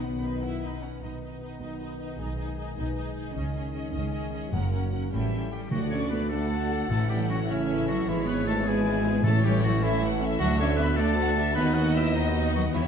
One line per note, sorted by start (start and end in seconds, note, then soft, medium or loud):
0.00 0.82 B1 medium
0.00 0.82 B2 medium
0.00 1.00 B2 medium
0.00 0.78 D#3 medium
0.00 0.78 B3 medium
0.00 0.82 B3 medium
0.00 0.22 B3 soft
0.00 1.20 D#4 soft
0.00 0.22 B4 soft
0.00 0.41 F#5 medium
0.00 0.22 F#5 soft
0.22 0.42 D#4 soft
0.22 0.80 B4 soft
0.22 0.43 D#5 soft
0.22 0.43 B5 soft
0.42 0.61 E4 medium
0.42 0.62 B4 soft
0.42 2.21 F#5 soft
0.42 0.63 F#5 soft
0.60 0.83 D#4 medium
0.60 0.80 D#5 soft
0.60 4.52 D#5 soft
0.60 0.81 B5 soft
0.81 1.02 C#4 soft
0.81 1.01 B4 soft
0.81 1.60 B4 soft
0.81 1.02 F#5 soft
1.01 1.51 B1 soft
1.01 2.18 B2 soft
1.01 1.51 B2 soft
1.01 3.33 D#3 soft
1.01 2.16 B3 soft
1.01 1.21 D#4 soft
1.01 1.20 B4 soft
1.01 1.22 D#5 soft
1.21 1.98 D#4 soft
1.21 1.41 D#4 soft
1.21 1.38 B4 soft
1.21 1.42 D#5 soft
1.39 1.60 D#4 soft
1.39 1.79 F#4 soft
1.39 1.59 B4 soft
1.44 1.61 D#5 soft
1.59 2.10 B1 soft
1.59 2.09 B2 soft
1.59 1.80 D#4 soft
1.59 1.79 B4 soft
1.59 2.75 B4 soft
1.59 1.79 D#5 soft
1.80 1.99 D#4 soft
1.80 2.21 F#4 soft
1.80 1.98 B4 soft
1.80 1.98 D#5 soft
1.99 2.37 D#4 soft
1.99 2.18 D#4 soft
1.99 2.19 B4 soft
1.99 2.19 D#5 soft
2.18 2.68 B1 soft
2.18 2.68 B2 soft
2.18 3.38 B2 soft
2.18 4.54 G#3 soft
2.18 2.38 D#4 soft
2.18 2.36 G#4 soft
2.18 2.37 D#5 soft
2.37 3.14 D#4 soft
2.37 2.56 D#4 soft
2.37 2.55 G#4 soft
2.37 2.57 D#5 soft
2.57 2.76 D#4 soft
2.57 2.75 G#4 soft
2.57 2.95 G#4 soft
2.57 2.75 D#5 soft
2.76 3.27 B1 soft
2.76 3.26 B2 soft
2.76 2.94 D#4 soft
2.76 2.96 G#4 soft
2.76 3.37 B4 soft
2.76 2.94 D#5 soft
2.95 3.14 D#4 soft
2.95 3.72 G#4 soft
2.95 3.16 G#4 soft
2.95 3.14 D#5 soft
3.15 3.35 D#4 soft
3.15 3.54 D#4 soft
3.15 3.36 G#4 soft
3.15 3.33 D#5 soft
3.34 3.85 C#2 medium
3.34 3.84 C#3 medium
3.34 4.55 C#3 soft
3.34 4.51 D#3 soft
3.34 3.54 C#4 soft
3.34 3.53 G#4 soft
3.34 3.52 D#5 soft
3.53 3.73 C#4 soft
3.53 3.92 D#4 soft
3.53 3.73 G#4 soft
3.53 3.72 D#5 soft
3.73 3.92 C#4 soft
3.73 4.12 G#4 soft
3.73 3.93 G#4 soft
3.73 3.91 D#5 soft
3.92 4.43 C#2 medium
3.92 4.43 C#3 medium
3.92 4.12 C#4 medium
3.92 4.32 D#4 soft
3.92 4.11 G#4 soft
3.92 4.11 D#5 soft
4.12 4.30 C#4 soft
4.12 4.31 G#4 medium
4.12 4.32 D#5 medium
4.32 4.52 C#4 soft
4.32 4.55 D#4 soft
4.32 4.52 G#4 soft
4.32 4.53 D#5 soft
4.50 5.03 F#1 medium
4.50 5.09 F#2 medium
4.50 5.03 F#2 medium
4.50 5.14 F#2 medium
4.50 5.12 F#3 medium
4.50 5.11 A#3 medium
4.50 4.71 C#4 medium
4.50 4.73 A#4 medium
4.50 4.72 F#5 medium
4.72 4.91 C#4 soft
4.72 5.31 C#4 soft
4.72 4.92 A#4 soft
4.72 4.89 F#5 soft
4.90 5.11 C#4 soft
4.90 5.14 F#4 soft
4.90 5.13 A#4 soft
4.90 5.15 A#4 soft
4.90 5.11 F#5 soft
5.11 5.63 A1 medium
5.11 5.74 A2 soft
5.11 5.63 A2 soft
5.11 5.50 E3 medium
5.11 5.52 G3 soft
5.11 5.51 C#4 soft
5.11 5.31 C#4 soft
5.11 5.50 E4 medium
5.11 5.32 A4 soft
5.11 5.50 E5 medium
5.11 5.30 G5 soft
5.32 5.51 C#4 soft
5.32 5.74 C#4 soft
5.32 5.52 A4 soft
5.32 5.51 G5 soft
5.51 5.72 G3 medium
5.51 5.72 C#4 soft
5.51 5.74 G4 soft
5.51 5.70 G4 medium
5.51 6.10 A4 soft
5.51 5.73 A4 soft
5.51 5.72 G5 medium
5.69 6.94 D2 medium
5.69 6.87 D2 medium
5.69 6.26 D3 medium
5.69 6.91 D3 medium
5.69 6.27 D3 medium
5.69 5.92 F#3 medium
5.69 6.26 A3 medium
5.69 5.90 A3 medium
5.69 6.28 A3 medium
5.69 5.80 F#4 medium
5.69 5.90 F#4 medium
5.69 6.28 D5 medium
5.69 5.92 F#5 medium
5.73 6.28 F#4 medium
5.81 8.08 A3 soft
5.90 6.12 C#4 medium
5.90 6.78 D4 medium
5.90 6.12 D4 medium
5.90 6.12 A4 medium
5.90 6.00 C#5 medium
5.90 6.11 C#6 medium
6.01 6.68 F#4 medium
6.10 6.31 A3 medium
6.10 6.32 B3 medium
6.10 6.31 F#4 medium
6.10 7.27 A4 medium
6.10 6.29 B4 medium
6.10 6.31 B5 medium
6.21 6.60 D5 medium
6.29 6.89 D3 medium
6.29 6.89 A3 medium
6.29 6.51 D4 medium
6.29 6.89 F#4 medium
6.29 6.88 A4 medium
6.29 6.51 A4 medium
6.29 6.51 F#5 medium
6.29 7.50 F#5 medium
6.29 6.90 A5 medium
6.41 7.57 A5 medium
6.51 6.69 A3 medium
6.51 6.70 F#4 medium
6.51 6.92 F#5 medium
6.61 6.92 D5 medium
6.69 6.90 D4 medium
6.69 6.91 F#4 medium
6.69 6.90 A4 medium
6.79 6.92 D4 medium
6.89 8.08 A1 medium
6.89 8.08 A2 medium
6.89 7.45 A2 medium
6.89 7.49 E3 medium
6.89 7.48 A3 medium
6.89 6.98 A3 medium
6.89 7.08 C#4 medium
6.89 7.08 E4 medium
6.89 7.47 E4 medium
6.89 7.09 A4 loud
6.89 6.99 A5 medium
6.94 7.47 A3 medium
6.99 7.17 E3 medium
7.08 7.30 G3 medium
7.08 7.27 C#4 medium
7.08 7.87 E4 medium
7.08 7.27 E4 medium
7.08 7.19 G4 medium
7.08 7.29 G5 medium
7.18 7.96 E3 medium
7.28 7.49 F#3 medium
7.28 7.46 C#4 medium
7.28 7.46 E4 medium
7.28 7.39 F#4 medium
7.28 7.48 A4 medium
7.28 7.50 F#5 medium
7.38 7.67 E5 medium
7.47 7.88 C#3 medium
7.47 8.05 E3 medium
7.47 8.06 A3 medium
7.47 8.07 A3 medium
7.47 7.66 C#4 medium
7.47 7.87 C#4 medium
7.47 7.66 E4 medium
7.47 8.06 E4 medium
7.47 7.77 A4 medium
7.47 7.89 C#5 medium
7.47 8.07 E5 medium
7.58 8.09 A5 medium
7.67 7.86 C#4 medium
7.67 7.86 E4 medium
7.67 8.55 E5 medium
7.78 8.09 A4 medium
7.87 8.07 F#3 medium
7.87 8.07 C#4 medium
7.87 8.05 E4 medium
7.87 8.26 E4 medium
7.87 8.10 F#4 medium
7.87 8.08 F#5 medium
7.97 8.09 E3 medium
8.06 9.22 G#1 medium
8.06 9.27 G#1 medium
8.06 9.26 G#2 medium
8.06 8.63 E3 medium
8.06 8.27 E3 medium
8.06 8.25 G#3 medium
8.06 8.64 G#3 medium
8.06 8.65 B3 medium
8.06 8.25 E4 medium
8.06 8.29 E4 medium
8.06 8.66 E4 medium
8.06 8.65 C#5 loud
8.06 8.16 E5 medium
8.17 8.37 G#3 medium
8.25 8.45 B3 medium
8.25 8.46 B3 medium
8.25 9.04 E4 medium
8.25 8.45 G#4 medium
8.25 8.47 B4 loud
8.25 8.35 B5 medium
8.38 9.13 G#3 medium
8.46 8.66 G#3 medium
8.46 8.66 A3 medium
8.46 8.66 E4 medium
8.46 8.69 A4 loud
8.46 8.65 B4 medium
8.46 8.66 A5 medium
8.56 8.84 E5 medium
8.64 9.22 E3 medium
8.64 9.23 G#3 medium
8.64 8.85 B3 medium
8.64 9.23 B3 medium
8.64 9.24 E4 medium
8.64 8.85 G#4 medium
8.64 9.23 G#4 loud
8.64 8.94 B4 medium
8.64 9.22 G#5 medium
8.68 9.26 B4 medium
8.77 9.26 B5 medium
8.85 9.03 G#3 medium
8.85 9.03 E4 medium
8.85 9.81 E5 medium
8.95 9.26 B4 medium
9.04 9.24 B3 medium
9.04 9.53 E4 medium
9.04 9.24 G#4 medium
9.15 9.26 G#3 medium
9.23 10.41 A1 medium
9.23 10.40 A1 loud
9.23 9.78 A2 loud
9.23 10.43 A2 medium
9.23 9.80 E3 medium
9.23 9.31 A3 loud
9.23 9.42 A3 medium
9.23 9.81 A3 medium
9.23 9.82 C#4 medium
9.23 9.42 E4 medium
9.23 9.82 E4 medium
9.23 9.46 A4 loud
9.23 9.82 C#5 loud
9.23 9.44 A5 loud
9.35 10.43 E3 medium
9.42 9.62 G3 loud
9.42 9.62 C#4 medium
9.42 10.29 C#4 medium
9.42 9.63 G4 loud
9.42 9.63 A4 medium
9.42 9.62 G5 medium
9.55 10.21 E4 medium
9.60 9.71 F#3 loud
9.60 9.82 A3 medium
9.60 9.82 E4 medium
9.60 9.85 F#4 loud
9.60 10.77 A4 medium
9.60 9.81 F#5 loud
9.81 10.39 E3 medium
9.81 10.02 E3 loud
9.81 10.39 A3 medium
9.81 10.01 C#4 medium
9.81 10.40 C#4 medium
9.81 10.40 E4 medium
9.81 10.02 E4 loud
9.81 10.02 A4 medium
9.81 10.01 E5 medium
9.81 10.02 E5 medium
9.81 10.02 E5 loud
9.92 11.07 A5 medium
10.01 10.20 A3 medium
10.01 10.19 E4 medium
10.01 10.43 E5 medium
10.01 10.22 F#5 loud
10.11 10.42 C#5 medium
10.20 10.40 C#4 medium
10.20 10.42 E4 medium
10.20 10.40 A4 medium
10.20 11.00 E5 loud
10.30 10.42 C#4 medium
10.39 11.59 D2 loud
10.39 11.55 D2 loud
10.39 11.59 D3 medium
10.39 10.99 D3 medium
10.39 10.59 F#3 loud
10.39 10.58 A3 medium
10.39 10.98 A3 medium
10.39 10.99 D4 loud
10.39 10.98 F#4 loud
10.39 10.58 F#4 loud
10.39 10.58 F#4 medium
10.39 10.58 F#5 loud
10.59 10.67 C#4 loud
10.59 10.79 D4 medium
10.59 11.47 D4 medium
10.59 10.79 A4 medium
10.59 10.79 C#5 loud
10.59 10.68 C#6 loud
10.69 11.37 F#4 medium
10.77 10.99 A3 medium
10.77 10.98 B3 medium
10.77 10.99 F#4 medium
10.77 11.58 A4 medium
10.77 10.98 B4 loud
10.77 10.99 B5 medium
10.87 11.27 D5 medium
10.96 11.57 A3 loud
10.96 11.57 A3 medium
10.96 11.18 D4 medium
10.96 11.55 F#4 medium
10.96 11.55 A4 loud
10.96 11.18 A4 medium
10.96 11.19 D5 medium
10.96 11.17 F#5 medium
10.96 11.56 A5 loud
11.01 11.57 D3 medium
11.01 11.57 D4 medium
11.08 11.59 A5 medium
11.18 11.37 A3 medium
11.18 11.36 F#4 medium
11.18 12.14 F#5 medium
11.18 11.28 F#5 loud
11.29 11.59 D5 medium
11.37 11.57 D4 medium
11.37 11.85 F#4 medium
11.37 11.57 A4 medium
11.37 11.58 E5 loud
11.55 12.74 D#2 medium
11.55 12.58 D#2 medium
11.55 12.76 D#3 medium
11.55 12.16 D#3 medium
11.55 12.14 B3 medium
11.55 11.77 B3 loud
11.55 11.75 D#4 medium
11.55 11.75 F#4 medium
11.55 12.13 F#4 medium
11.55 11.76 B4 loud
11.55 12.75 D#5 loud
11.55 11.76 B5 loud
11.60 12.16 B3 medium
11.66 12.76 D#4 medium
11.74 12.63 B3 medium
11.74 11.97 B3 medium
11.74 11.96 D#4 medium
11.74 11.96 F#4 loud
11.74 11.95 F#5 loud
11.74 11.96 F#6 loud
11.86 12.05 F#4 medium
11.95 12.15 D#4 medium
11.95 12.16 E4 loud
11.95 12.16 F#4 medium
11.95 12.43 B4 medium
11.95 12.15 E5 loud
11.95 12.16 E6 loud
12.06 12.53 F#4 medium
12.15 12.55 D#3 medium
12.15 12.74 D#3 medium
12.15 12.73 B3 medium
12.15 12.35 B3 medium
12.15 12.72 B3 medium
12.15 12.54 D#4 loud
12.15 12.34 D#4 medium
12.15 12.73 F#4 medium
12.15 12.54 D#5 medium
12.15 12.34 F#5 medium
12.25 12.88 B5 medium
12.35 12.53 D#4 medium
12.35 12.53 F#4 medium
12.35 12.76 F#5 medium
12.44 12.88 B4 medium
12.54 12.62 F#3 medium
12.54 12.73 B3 medium
12.54 12.74 D#4 medium
12.54 12.76 F#4 medium
12.54 12.64 F#4 medium
12.54 12.75 F#5 medium
12.64 12.83 B3 medium
12.73 12.88 E1 medium
12.73 12.88 E2 medium
12.73 12.88 E3 medium
12.73 12.82 E3 loud
12.73 12.88 E3 medium
12.73 12.88 B3 medium
12.73 12.88 E4 medium
12.73 12.88 E4 loud
12.73 12.88 E4 medium
12.73 12.88 E5 medium
12.77 12.88 C#5 medium
12.85 12.88 B3 medium